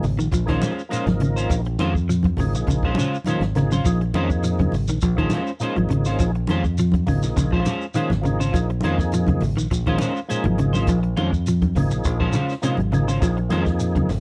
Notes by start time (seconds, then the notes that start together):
0.03 G#1, muted clean electric guitar stroke, open hi-hat, low conga, shekere
0.17 A#1 D#3, muted clean electric guitar stroke, closed hi-hat, shekere
0.31 A#1 F3, muted clean electric guitar stroke, kick, closed hi-hat, shekere
0.46 D#3 F3 G#3 A#3 C#4 D#4 F4 G#4 C5, kick, snare, closed hi-hat
0.62 G#3 C#4 F4 C5, snare, closed hi-hat, high conga, shekere
0.79 shekere
0.89 F3 G#3 A#3 C#4 D#4 F4 A#4 C5, closed hi-hat, shekere
1.06 G#1 F3, muted clean electric guitar stroke, snare, closed hi-hat, high conga, low conga
1.20 C#3, muted clean electric guitar stroke, closed hi-hat, low conga, shekere
1.36 C#4 F4 C5, shekere
1.50 A#1 F3, kick, closed hi-hat, shekere
1.65 muted clean electric guitar stroke, closed hi-hat
1.78 F2 D#3 G#3 C#4 F4 C5, snare, closed hi-hat, high conga
1.95 muted clean electric guitar stroke, kick, shekere
2.09 F3, closed hi-hat, shekere
2.23 muted clean electric guitar stroke, kick, closed hi-hat, high conga
2.37 G#1 C#3 F3 A#3 D#4 G#4, muted clean electric guitar stroke, kick, open hi-hat, low conga, shekere
2.53 A#1, muted clean electric guitar stroke, closed hi-hat, shekere
2.67 A#1 C#3, muted clean electric guitar stroke, kick, closed hi-hat, shekere
2.83 G#3 C#4 F4 C5, muted clean electric guitar stroke, kick
2.95 C#3 G#3, closed hi-hat, high conga
2.99 C#4 F4 C5, shekere
3.14 shekere
3.24 D#3 F3 G#3 A#3 D#4 G#4, closed hi-hat, high conga, shekere
3.29 C#4 F4 C5
3.40 G#1, muted clean electric guitar stroke, snare, closed hi-hat, high conga
3.55 C#3 F3 A#3 D#4 G#4, muted clean electric guitar stroke, snare, closed hi-hat, low conga, shekere
3.72 C#3 C#4 F4 C5, closed hi-hat, high conga, shekere
3.84 A#1 F3 A#3 D#4 G#4, kick, closed hi-hat, shekere
4.01 muted clean electric guitar stroke, closed hi-hat
4.14 F2 D#3 F3 G#3 A#3 C#4 D#4 F4 G#4 C5, closed hi-hat, high conga
4.30 muted clean electric guitar stroke, kick, shekere
4.44 F3, closed hi-hat, shekere
4.59 C#3, muted clean electric guitar stroke, kick, closed hi-hat, high conga
4.72 G#1, muted clean electric guitar stroke, open hi-hat, low conga, shekere
4.88 A#1 D#3, muted clean electric guitar stroke, closed hi-hat, shekere
5.01 A#1 F3, muted clean electric guitar stroke, kick, closed hi-hat, shekere
5.16 D#3 F3 G#3 A#3 C#4 D#4 F4 G#4 C5, kick, closed hi-hat
5.30 G#3 C#4 F4 C5, snare, closed hi-hat, high conga, shekere
5.47 shekere
5.60 F3 G#3 A#3 C#4 D#4 F4 G#4 C5, closed hi-hat, shekere
5.76 G#1 F3, muted clean electric guitar stroke, closed hi-hat, high conga
5.89 C#3, muted clean electric guitar stroke, closed hi-hat, low conga, shekere
6.05 C#4 F4 C5, snare, shekere
6.19 A#1 F3, kick, closed hi-hat, shekere
6.35 muted clean electric guitar stroke, closed hi-hat
6.47 F2 D#3 G#3 C#4 F4 C5, snare, closed hi-hat, high conga
6.64 muted clean electric guitar stroke, kick, shekere
6.78 F3, closed hi-hat, shekere
6.92 muted clean electric guitar stroke, kick, closed hi-hat, high conga
7.06 G#1 C#3 F3 A#3 D#4 G#4, muted clean electric guitar stroke, kick, open hi-hat, low conga, shekere
7.23 A#1, muted clean electric guitar stroke, snare, closed hi-hat, shekere
7.36 A#1 C#3, muted clean electric guitar stroke, kick, closed hi-hat, shekere
7.52 F3 G#3 C#4 F4 C5, kick
7.66 G#3 C#4 F4 C5, muted clean electric guitar stroke, closed hi-hat, high conga, shekere
7.81 shekere
7.94 D#3 F3 G#3 A#3 C#4 D#4 F4 G#4 C5, closed hi-hat, shekere
8.10 G#1, muted clean electric guitar stroke, snare, closed hi-hat, high conga, low conga
8.21 C#3 F3 A#3 D#4 G#4, muted clean electric guitar stroke, low conga
8.25 closed hi-hat, shekere
8.40 C#3 C#4 F4 C5, closed hi-hat, shekere
8.52 A#1 F3 A#3 D#4 G#4, kick, closed hi-hat, shekere
8.70 muted clean electric guitar stroke, closed hi-hat
8.81 F2 D#3 F3 G#3 A#3 C#4 D#4 C5, snare, closed hi-hat, high conga
8.85 F4 G#4
8.98 muted clean electric guitar stroke, kick, snare, shekere
9.12 F3, closed hi-hat, shekere
9.27 C#3, muted clean electric guitar stroke, kick, closed hi-hat, high conga
9.41 G#1, muted clean electric guitar stroke, open hi-hat, low conga, shekere
9.56 A#1 D#3, muted clean electric guitar stroke, closed hi-hat, shekere
9.71 A#1 F3, muted clean electric guitar stroke, kick, closed hi-hat, shekere
9.86 D#3 F3 G#3 A#3 C#4 D#4 F4 G#4 C5, kick, closed hi-hat
9.98 G#3 C#4 F4 C5, snare, closed hi-hat, high conga, shekere
10.17 shekere
10.28 F3 G#3 A#3 C#4 D#4 G#4 C5, closed hi-hat, shekere
10.44 G#1 F3, muted clean electric guitar stroke, closed hi-hat, high conga, low conga
10.58 C#3, muted clean electric guitar stroke, closed hi-hat, low conga, shekere
10.73 C#4 F4 C5, snare, high conga, shekere
10.87 A#1 F3, kick, closed hi-hat, shekere
11.03 muted clean electric guitar stroke, closed hi-hat
11.17 F2 D#3 G#3 C#4 F4 C5, closed hi-hat, high conga
11.32 muted clean electric guitar stroke, kick, shekere
11.46 F3, closed hi-hat, shekere
11.62 muted clean electric guitar stroke, kick, closed hi-hat, high conga
11.75 G#1 C#3 F3 A#3 D#4 G#4, muted clean electric guitar stroke, kick, open hi-hat, low conga, shekere
11.91 A#1, muted clean electric guitar stroke, closed hi-hat, shekere
12.04 A#1, muted clean electric guitar stroke, kick, closed hi-hat, shekere
12.20 F3 G#3 C#4 F4 C5, kick
12.33 C#3 G#3 C#4 F4 C5, closed hi-hat, high conga, shekere
12.49 snare, shekere
12.62 C3 F3 G#3 A#3 C#4 D#4 F4 G#4 C5, closed hi-hat, shekere
12.77 G#1, muted clean electric guitar stroke, closed hi-hat, high conga
12.92 C#3 F3 A#3 D#4 G#4, muted clean electric guitar stroke, closed hi-hat, low conga, shekere
13.08 C#3 C#4 F4 C5, closed hi-hat, shekere
13.20 A#1 F3 A#3 D#4 G#4, kick, closed hi-hat, shekere
13.37 muted clean electric guitar stroke, closed hi-hat
13.49 F2 D#3 F3 G#3 A#3 C#4 D#4 F4 G#4 C5, snare, closed hi-hat, high conga
13.66 muted clean electric guitar stroke, kick, snare, shekere
13.80 closed hi-hat, shekere
13.95 C#3, muted clean electric guitar stroke, kick, closed hi-hat, high conga
14.09 G#1, muted clean electric guitar stroke, snare, open hi-hat, low conga, shekere